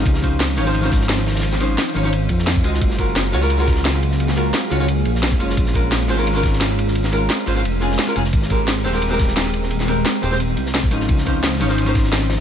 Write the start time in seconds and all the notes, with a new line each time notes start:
Already playing: F3 C#4 D#4 D#5
0.06 C#2 D#3 C#4 C5 F5, kick, closed hi-hat, ride
0.14 snare
0.22 F3 C#4 D#4 C5, kick, closed hi-hat, ride
0.40 snare, closed hi-hat, open hi-hat
0.56 G#1 F3 C#4 D#4 C#5, closed hi-hat, ride
0.65 F3 C#4 D#4 C5
0.74 closed hi-hat, ride
0.81 F3 C#4 D#4, ride
0.85 C5
0.92 kick, snare, closed hi-hat, ride
1.01 snare
1.09 snare, closed hi-hat, ride
1.18 snare, ride
1.26 snare, closed hi-hat, open hi-hat
1.35 snare, open hi-hat
1.40 snare, open hi-hat, ride
1.44 closed hi-hat
1.52 snare
1.60 F3 C#4 D#4 C5, closed hi-hat, ride
1.78 snare, closed hi-hat, ride
1.94 G#1 F3 C#4 D#4 C#5, open hi-hat, ride
2.03 F3 C#4 D#4 C#5
2.12 closed hi-hat, ride
2.29 F2, kick, closed hi-hat, ride
2.39 snare
2.46 snare, closed hi-hat, ride
2.56 kick, ride
2.63 C#2 G#3 F4 F#4 D#5, closed hi-hat, ride
2.74 snare
2.81 F#1 F#3 A#3 G#4, kick, closed hi-hat, ride
2.90 snare
2.98 G#3 F4 F#4 A#4, kick, closed hi-hat, ride
3.16 snare, closed hi-hat, open hi-hat
3.32 C#2 G#3 F4 F#4 C#5, closed hi-hat, ride
3.41 G#3 F4 F#4 A#4
3.50 closed hi-hat, ride
3.57 G#3 F4 F#4 A#4, ride
3.67 kick, snare, closed hi-hat, ride
3.76 snare
3.85 snare, closed hi-hat, ride
3.93 snare, ride
4.02 closed hi-hat, ride
4.11 snare
4.19 closed hi-hat, ride
4.28 snare
4.36 G#3 F4 F#4 A#4, closed hi-hat, ride
4.53 snare, closed hi-hat, ride
4.70 C#2 G#3 F4 F#4 C#5, open hi-hat, ride
4.79 G#3 F4 F#4 C#5
4.88 closed hi-hat, ride
5.05 A#1, closed hi-hat, ride
5.15 snare
5.23 snare, closed hi-hat, ride
5.32 kick, ride
5.39 F#1 G#3 C#4 F4 C#5, closed hi-hat, ride
5.49 snare
5.57 A#1 G#3 C#4 F4 A#4, kick, closed hi-hat, ride
5.66 snare
5.74 G#3 C#4 F4 A#4, kick, closed hi-hat, ride
5.92 snare, closed hi-hat, open hi-hat
6.08 G#1 G#3 C#4 F4 C5, closed hi-hat, ride
6.17 G#3 C#4 F4 A#4
6.26 closed hi-hat, ride
6.33 G#3 C#4 F4, ride
6.37 A#4
6.43 kick, snare, closed hi-hat, ride
6.53 snare
6.60 snare, closed hi-hat, ride
6.70 snare, ride
6.78 closed hi-hat, ride
6.87 snare
6.95 closed hi-hat, ride
7.04 snare
7.11 G#3 C#4 F4 A#4, closed hi-hat, ride
7.30 snare, closed hi-hat, ride
7.46 G#1 G#3 C#4 F4 C5, open hi-hat, ride
7.55 G#3 C#4 F4 C5
7.64 F1, closed hi-hat, ride
7.80 G#3 C#4 F4 G#4, closed hi-hat, ride
7.91 snare
7.98 snare, closed hi-hat, ride
8.07 G#3 C#4 F4 A#4, ride
8.15 F1 G#3 C#4 F4 G#4, closed hi-hat, ride
8.25 snare
8.33 G#1 G#3 C4 G4, kick, closed hi-hat, ride
8.42 snare
8.50 G#3 C4 G4 A#4, kick, closed hi-hat, ride
8.68 snare, closed hi-hat, open hi-hat
8.84 D#1 G#3 C4 G4 C5, closed hi-hat, ride
8.93 G#3 C4 G4 A#4
9.02 closed hi-hat, ride
9.09 G#3 C4 G4, ride
9.13 A#4
9.19 kick, snare, closed hi-hat, ride
9.28 snare
9.36 snare, closed hi-hat, ride
9.45 snare, ride
9.53 closed hi-hat, ride
9.63 snare
9.70 closed hi-hat, ride
9.80 snare
9.87 G#3 C4 G4 A#4, closed hi-hat, ride
10.05 snare, closed hi-hat, ride
10.22 D#1 G#3 C4 G4 C5, open hi-hat, ride
10.31 G#3 C4 G4 C5
10.40 closed hi-hat, ride
10.57 C2, closed hi-hat, ride
10.66 snare
10.74 snare, closed hi-hat, ride
10.83 kick, ride
10.91 G#1 F3 C#4 D#4 D#5, closed hi-hat, ride
11.00 snare
11.09 C#2 F3 C#4 D#4 C5, kick, closed hi-hat, ride
11.18 snare
11.25 F3 C#4 D#4 C5, kick, closed hi-hat, ride
11.43 snare, closed hi-hat, open hi-hat
11.60 G#1 F3 C#4 D#4 C#5, closed hi-hat, ride
11.68 F3 C#4 D#4 C5
11.78 closed hi-hat, ride
11.85 F3 C#4 D#4 C5, ride
11.95 kick, snare, closed hi-hat, ride
12.04 snare
12.12 snare, closed hi-hat, ride
12.21 snare, ride
12.29 snare, closed hi-hat, open hi-hat